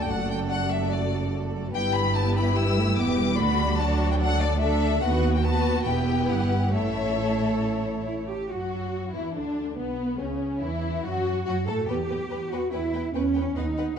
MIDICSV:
0, 0, Header, 1, 6, 480
1, 0, Start_track
1, 0, Key_signature, 2, "major"
1, 0, Tempo, 411523
1, 113, Time_signature, 4, 2, 24, 8
1, 6352, Tempo, 435414
1, 10672, Tempo, 419874
1, 15959, End_track
2, 0, Start_track
2, 0, Title_t, "Violin section"
2, 0, Program_c, 0, 48
2, 1, Note_on_c, 0, 79, 90
2, 99, Note_on_c, 0, 78, 103
2, 117, Note_off_c, 0, 79, 0
2, 342, Note_on_c, 0, 79, 103
2, 346, Note_off_c, 0, 78, 0
2, 436, Note_off_c, 0, 79, 0
2, 580, Note_on_c, 0, 78, 104
2, 821, Note_off_c, 0, 78, 0
2, 828, Note_on_c, 0, 76, 97
2, 1062, Note_on_c, 0, 74, 93
2, 1071, Note_off_c, 0, 76, 0
2, 1552, Note_off_c, 0, 74, 0
2, 2044, Note_on_c, 0, 79, 122
2, 2266, Note_off_c, 0, 79, 0
2, 2278, Note_on_c, 0, 83, 118
2, 2519, Note_off_c, 0, 83, 0
2, 2525, Note_on_c, 0, 81, 118
2, 2761, Note_off_c, 0, 81, 0
2, 2764, Note_on_c, 0, 83, 104
2, 2995, Note_off_c, 0, 83, 0
2, 2996, Note_on_c, 0, 88, 111
2, 3465, Note_on_c, 0, 86, 103
2, 3473, Note_off_c, 0, 88, 0
2, 3941, Note_on_c, 0, 83, 119
2, 3947, Note_off_c, 0, 86, 0
2, 4417, Note_on_c, 0, 81, 100
2, 4430, Note_off_c, 0, 83, 0
2, 4786, Note_off_c, 0, 81, 0
2, 4798, Note_on_c, 0, 79, 97
2, 4846, Note_off_c, 0, 79, 0
2, 4912, Note_on_c, 0, 78, 125
2, 5144, Note_on_c, 0, 74, 110
2, 5148, Note_off_c, 0, 78, 0
2, 5384, Note_on_c, 0, 76, 114
2, 5387, Note_off_c, 0, 74, 0
2, 5857, Note_off_c, 0, 76, 0
2, 5859, Note_on_c, 0, 78, 106
2, 6226, Note_off_c, 0, 78, 0
2, 6242, Note_on_c, 0, 79, 96
2, 6337, Note_on_c, 0, 81, 115
2, 6355, Note_off_c, 0, 79, 0
2, 6807, Note_on_c, 0, 79, 99
2, 6812, Note_off_c, 0, 81, 0
2, 7276, Note_off_c, 0, 79, 0
2, 7284, Note_on_c, 0, 78, 95
2, 7769, Note_off_c, 0, 78, 0
2, 7779, Note_on_c, 0, 76, 104
2, 9216, Note_off_c, 0, 76, 0
2, 9727, Note_on_c, 0, 66, 58
2, 10393, Note_off_c, 0, 66, 0
2, 10434, Note_on_c, 0, 64, 60
2, 10667, Note_off_c, 0, 64, 0
2, 10668, Note_on_c, 0, 62, 63
2, 11146, Note_off_c, 0, 62, 0
2, 11147, Note_on_c, 0, 59, 64
2, 11616, Note_on_c, 0, 61, 58
2, 11622, Note_off_c, 0, 59, 0
2, 12095, Note_on_c, 0, 64, 68
2, 12111, Note_off_c, 0, 61, 0
2, 12581, Note_off_c, 0, 64, 0
2, 12588, Note_on_c, 0, 66, 76
2, 13049, Note_off_c, 0, 66, 0
2, 13062, Note_on_c, 0, 66, 69
2, 13297, Note_on_c, 0, 69, 68
2, 13307, Note_off_c, 0, 66, 0
2, 13546, Note_on_c, 0, 79, 60
2, 13549, Note_off_c, 0, 69, 0
2, 13637, Note_off_c, 0, 79, 0
2, 13798, Note_on_c, 0, 79, 61
2, 13889, Note_off_c, 0, 79, 0
2, 14037, Note_on_c, 0, 79, 58
2, 14129, Note_off_c, 0, 79, 0
2, 14277, Note_on_c, 0, 79, 59
2, 14369, Note_off_c, 0, 79, 0
2, 14497, Note_on_c, 0, 79, 63
2, 14589, Note_off_c, 0, 79, 0
2, 14745, Note_on_c, 0, 79, 59
2, 14837, Note_off_c, 0, 79, 0
2, 14983, Note_on_c, 0, 79, 60
2, 15074, Note_off_c, 0, 79, 0
2, 15214, Note_on_c, 0, 79, 58
2, 15306, Note_off_c, 0, 79, 0
2, 15464, Note_on_c, 0, 78, 64
2, 15555, Note_off_c, 0, 78, 0
2, 15713, Note_on_c, 0, 78, 64
2, 15804, Note_off_c, 0, 78, 0
2, 15959, End_track
3, 0, Start_track
3, 0, Title_t, "Violin section"
3, 0, Program_c, 1, 48
3, 0, Note_on_c, 1, 69, 66
3, 0, Note_on_c, 1, 74, 62
3, 1995, Note_off_c, 1, 74, 0
3, 1996, Note_off_c, 1, 69, 0
3, 2036, Note_on_c, 1, 67, 74
3, 2041, Note_on_c, 1, 71, 80
3, 2484, Note_off_c, 1, 67, 0
3, 2522, Note_on_c, 1, 67, 80
3, 3428, Note_off_c, 1, 71, 0
3, 3456, Note_off_c, 1, 67, 0
3, 3473, Note_on_c, 1, 67, 77
3, 3477, Note_on_c, 1, 71, 80
3, 3941, Note_off_c, 1, 67, 0
3, 3943, Note_off_c, 1, 71, 0
3, 3954, Note_on_c, 1, 74, 74
3, 3958, Note_on_c, 1, 66, 73
3, 4412, Note_off_c, 1, 66, 0
3, 4426, Note_on_c, 1, 66, 85
3, 4898, Note_off_c, 1, 74, 0
3, 4901, Note_off_c, 1, 66, 0
3, 4912, Note_on_c, 1, 74, 74
3, 4913, Note_on_c, 1, 69, 77
3, 5377, Note_off_c, 1, 69, 0
3, 5381, Note_off_c, 1, 74, 0
3, 5391, Note_on_c, 1, 69, 81
3, 5394, Note_on_c, 1, 74, 80
3, 5860, Note_off_c, 1, 69, 0
3, 5862, Note_off_c, 1, 74, 0
3, 5874, Note_on_c, 1, 66, 77
3, 5874, Note_on_c, 1, 71, 78
3, 6321, Note_off_c, 1, 66, 0
3, 6321, Note_off_c, 1, 71, 0
3, 6352, Note_on_c, 1, 71, 88
3, 6355, Note_on_c, 1, 66, 89
3, 6807, Note_off_c, 1, 71, 0
3, 6812, Note_off_c, 1, 66, 0
3, 6820, Note_on_c, 1, 71, 80
3, 6826, Note_on_c, 1, 67, 80
3, 7754, Note_off_c, 1, 71, 0
3, 7774, Note_on_c, 1, 73, 82
3, 7776, Note_off_c, 1, 67, 0
3, 7779, Note_on_c, 1, 69, 75
3, 9467, Note_off_c, 1, 73, 0
3, 9503, Note_off_c, 1, 69, 0
3, 9727, Note_on_c, 1, 66, 53
3, 10393, Note_off_c, 1, 66, 0
3, 10433, Note_on_c, 1, 64, 57
3, 10671, Note_off_c, 1, 64, 0
3, 10682, Note_on_c, 1, 62, 63
3, 11153, Note_off_c, 1, 62, 0
3, 11158, Note_on_c, 1, 59, 70
3, 11628, Note_off_c, 1, 59, 0
3, 11632, Note_on_c, 1, 61, 59
3, 12117, Note_on_c, 1, 64, 71
3, 12119, Note_off_c, 1, 61, 0
3, 12602, Note_off_c, 1, 64, 0
3, 12616, Note_on_c, 1, 66, 75
3, 13053, Note_off_c, 1, 66, 0
3, 13066, Note_on_c, 1, 66, 80
3, 13158, Note_off_c, 1, 66, 0
3, 13318, Note_on_c, 1, 69, 70
3, 13410, Note_off_c, 1, 69, 0
3, 13562, Note_on_c, 1, 71, 58
3, 13654, Note_off_c, 1, 71, 0
3, 13804, Note_on_c, 1, 71, 48
3, 13895, Note_off_c, 1, 71, 0
3, 14038, Note_on_c, 1, 71, 62
3, 14130, Note_off_c, 1, 71, 0
3, 14285, Note_on_c, 1, 71, 60
3, 14377, Note_off_c, 1, 71, 0
3, 14520, Note_on_c, 1, 71, 61
3, 14611, Note_off_c, 1, 71, 0
3, 14767, Note_on_c, 1, 71, 55
3, 14859, Note_off_c, 1, 71, 0
3, 15013, Note_on_c, 1, 71, 67
3, 15104, Note_off_c, 1, 71, 0
3, 15250, Note_on_c, 1, 71, 53
3, 15342, Note_off_c, 1, 71, 0
3, 15478, Note_on_c, 1, 71, 68
3, 15570, Note_off_c, 1, 71, 0
3, 15723, Note_on_c, 1, 71, 61
3, 15814, Note_off_c, 1, 71, 0
3, 15959, End_track
4, 0, Start_track
4, 0, Title_t, "Cello section"
4, 0, Program_c, 2, 48
4, 117, Note_on_c, 2, 42, 69
4, 2041, Note_off_c, 2, 42, 0
4, 2045, Note_on_c, 2, 43, 75
4, 3430, Note_off_c, 2, 43, 0
4, 3477, Note_on_c, 2, 40, 83
4, 3948, Note_on_c, 2, 38, 85
4, 3953, Note_off_c, 2, 40, 0
4, 5869, Note_off_c, 2, 38, 0
4, 5875, Note_on_c, 2, 39, 80
4, 6778, Note_off_c, 2, 39, 0
4, 6820, Note_on_c, 2, 40, 77
4, 7285, Note_on_c, 2, 43, 81
4, 7292, Note_off_c, 2, 40, 0
4, 7770, Note_off_c, 2, 43, 0
4, 7770, Note_on_c, 2, 45, 71
4, 9235, Note_on_c, 2, 64, 75
4, 9241, Note_off_c, 2, 45, 0
4, 9323, Note_off_c, 2, 64, 0
4, 9480, Note_on_c, 2, 67, 73
4, 9722, Note_off_c, 2, 67, 0
4, 9722, Note_on_c, 2, 66, 62
4, 10435, Note_off_c, 2, 66, 0
4, 10438, Note_on_c, 2, 64, 60
4, 10526, Note_off_c, 2, 64, 0
4, 10662, Note_on_c, 2, 62, 65
4, 11142, Note_off_c, 2, 62, 0
4, 11159, Note_on_c, 2, 59, 70
4, 11628, Note_off_c, 2, 59, 0
4, 11637, Note_on_c, 2, 61, 60
4, 12122, Note_off_c, 2, 61, 0
4, 12123, Note_on_c, 2, 64, 72
4, 12605, Note_off_c, 2, 64, 0
4, 12606, Note_on_c, 2, 66, 78
4, 13062, Note_off_c, 2, 66, 0
4, 13076, Note_on_c, 2, 66, 83
4, 13315, Note_off_c, 2, 66, 0
4, 13315, Note_on_c, 2, 69, 82
4, 13553, Note_off_c, 2, 69, 0
4, 13553, Note_on_c, 2, 67, 86
4, 14264, Note_off_c, 2, 67, 0
4, 14282, Note_on_c, 2, 66, 82
4, 14512, Note_on_c, 2, 64, 90
4, 14522, Note_off_c, 2, 66, 0
4, 14986, Note_off_c, 2, 64, 0
4, 14994, Note_on_c, 2, 61, 101
4, 15466, Note_off_c, 2, 61, 0
4, 15471, Note_on_c, 2, 63, 84
4, 15950, Note_off_c, 2, 63, 0
4, 15959, End_track
5, 0, Start_track
5, 0, Title_t, "Viola section"
5, 0, Program_c, 3, 48
5, 0, Note_on_c, 3, 57, 65
5, 0, Note_on_c, 3, 66, 63
5, 1990, Note_off_c, 3, 66, 0
5, 1991, Note_off_c, 3, 57, 0
5, 2037, Note_on_c, 3, 59, 79
5, 2040, Note_on_c, 3, 64, 84
5, 2950, Note_off_c, 3, 59, 0
5, 2998, Note_on_c, 3, 55, 82
5, 3237, Note_off_c, 3, 55, 0
5, 3237, Note_on_c, 3, 57, 86
5, 3468, Note_on_c, 3, 59, 88
5, 3474, Note_off_c, 3, 57, 0
5, 3709, Note_off_c, 3, 59, 0
5, 3718, Note_on_c, 3, 55, 79
5, 3905, Note_off_c, 3, 64, 0
5, 3954, Note_off_c, 3, 55, 0
5, 3958, Note_on_c, 3, 57, 80
5, 3961, Note_on_c, 3, 62, 85
5, 4188, Note_on_c, 3, 55, 89
5, 4196, Note_off_c, 3, 57, 0
5, 4432, Note_off_c, 3, 55, 0
5, 4441, Note_on_c, 3, 54, 81
5, 5371, Note_off_c, 3, 62, 0
5, 5385, Note_on_c, 3, 57, 81
5, 5385, Note_on_c, 3, 62, 87
5, 5395, Note_off_c, 3, 54, 0
5, 5858, Note_off_c, 3, 62, 0
5, 5867, Note_off_c, 3, 57, 0
5, 5872, Note_on_c, 3, 66, 81
5, 5876, Note_on_c, 3, 59, 85
5, 6320, Note_off_c, 3, 66, 0
5, 6322, Note_off_c, 3, 59, 0
5, 6352, Note_on_c, 3, 59, 81
5, 6354, Note_on_c, 3, 66, 80
5, 6810, Note_off_c, 3, 59, 0
5, 6811, Note_off_c, 3, 66, 0
5, 6819, Note_on_c, 3, 64, 80
5, 6822, Note_on_c, 3, 59, 79
5, 7755, Note_off_c, 3, 59, 0
5, 7761, Note_off_c, 3, 64, 0
5, 7773, Note_on_c, 3, 57, 72
5, 7774, Note_on_c, 3, 64, 75
5, 9466, Note_off_c, 3, 57, 0
5, 9466, Note_off_c, 3, 64, 0
5, 9731, Note_on_c, 3, 54, 54
5, 10395, Note_off_c, 3, 54, 0
5, 10430, Note_on_c, 3, 52, 61
5, 10664, Note_on_c, 3, 50, 59
5, 10670, Note_off_c, 3, 52, 0
5, 11145, Note_on_c, 3, 59, 67
5, 11153, Note_off_c, 3, 50, 0
5, 11621, Note_off_c, 3, 59, 0
5, 11633, Note_on_c, 3, 49, 59
5, 12115, Note_on_c, 3, 52, 67
5, 12120, Note_off_c, 3, 49, 0
5, 12601, Note_off_c, 3, 52, 0
5, 12605, Note_on_c, 3, 54, 70
5, 13074, Note_off_c, 3, 54, 0
5, 13089, Note_on_c, 3, 54, 79
5, 13180, Note_off_c, 3, 54, 0
5, 13330, Note_on_c, 3, 57, 74
5, 13561, Note_off_c, 3, 57, 0
5, 13561, Note_on_c, 3, 59, 60
5, 13652, Note_off_c, 3, 59, 0
5, 13815, Note_on_c, 3, 59, 58
5, 13906, Note_off_c, 3, 59, 0
5, 14059, Note_on_c, 3, 59, 56
5, 14150, Note_off_c, 3, 59, 0
5, 14295, Note_on_c, 3, 59, 56
5, 14386, Note_off_c, 3, 59, 0
5, 14533, Note_on_c, 3, 59, 56
5, 14624, Note_off_c, 3, 59, 0
5, 14754, Note_on_c, 3, 59, 61
5, 14845, Note_off_c, 3, 59, 0
5, 14989, Note_on_c, 3, 59, 65
5, 15080, Note_off_c, 3, 59, 0
5, 15242, Note_on_c, 3, 59, 57
5, 15333, Note_off_c, 3, 59, 0
5, 15482, Note_on_c, 3, 59, 70
5, 15574, Note_off_c, 3, 59, 0
5, 15728, Note_on_c, 3, 59, 64
5, 15819, Note_off_c, 3, 59, 0
5, 15959, End_track
6, 0, Start_track
6, 0, Title_t, "Double bass section"
6, 0, Program_c, 4, 48
6, 108, Note_on_c, 4, 30, 75
6, 2037, Note_off_c, 4, 30, 0
6, 2042, Note_on_c, 4, 31, 83
6, 3429, Note_off_c, 4, 31, 0
6, 3477, Note_on_c, 4, 28, 78
6, 3953, Note_off_c, 4, 28, 0
6, 3958, Note_on_c, 4, 38, 91
6, 5874, Note_off_c, 4, 38, 0
6, 5874, Note_on_c, 4, 39, 86
6, 6778, Note_off_c, 4, 39, 0
6, 6821, Note_on_c, 4, 28, 75
6, 7292, Note_off_c, 4, 28, 0
6, 7294, Note_on_c, 4, 31, 66
6, 7774, Note_off_c, 4, 31, 0
6, 7774, Note_on_c, 4, 33, 83
6, 9501, Note_off_c, 4, 33, 0
6, 9726, Note_on_c, 4, 42, 59
6, 10393, Note_off_c, 4, 42, 0
6, 10438, Note_on_c, 4, 40, 62
6, 10526, Note_off_c, 4, 40, 0
6, 10671, Note_on_c, 4, 38, 61
6, 11147, Note_off_c, 4, 38, 0
6, 11154, Note_on_c, 4, 35, 59
6, 11632, Note_on_c, 4, 37, 58
6, 11635, Note_off_c, 4, 35, 0
6, 12109, Note_off_c, 4, 37, 0
6, 12120, Note_on_c, 4, 40, 62
6, 12594, Note_off_c, 4, 40, 0
6, 12599, Note_on_c, 4, 42, 67
6, 13065, Note_off_c, 4, 42, 0
6, 13079, Note_on_c, 4, 42, 75
6, 13316, Note_off_c, 4, 42, 0
6, 13317, Note_on_c, 4, 45, 85
6, 13559, Note_off_c, 4, 45, 0
6, 13560, Note_on_c, 4, 40, 73
6, 13985, Note_off_c, 4, 40, 0
6, 14035, Note_on_c, 4, 40, 62
6, 14462, Note_off_c, 4, 40, 0
6, 14520, Note_on_c, 4, 40, 60
6, 14942, Note_off_c, 4, 40, 0
6, 14998, Note_on_c, 4, 40, 78
6, 15421, Note_off_c, 4, 40, 0
6, 15479, Note_on_c, 4, 39, 77
6, 15898, Note_off_c, 4, 39, 0
6, 15959, End_track
0, 0, End_of_file